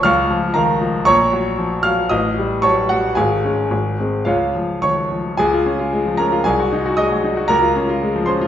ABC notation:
X:1
M:2/4
L:1/16
Q:1/4=114
K:Bbm
V:1 name="Grand piano"
[fd'f']4 [Bfb]2 z2 | [K:Db] [dbd']6 [ff']2 | [ee']4 [^c=a^c']2 [Gg]2 | [Afa]8 |
[Fdf]4 [dd']4 | [Aa]6 [Bb]2 | [Aa]4 [ee']4 | [Bb]6 [cc']2 |]
V:2 name="Grand piano" clef=bass
D,,2 F,2 E,2 F,2 | [K:Db] B,,,2 G,2 F,2 G,2 | =A,,,2 =G,2 _G,2 =G,2 | A,,,2 [A,D]2 A,,,2 [A,C]2 |
D,,2 F,2 E,2 F,2 | D,, F D F A, F, D F | C,, G E G A, G, E G | D,, F D F A, F, D F |]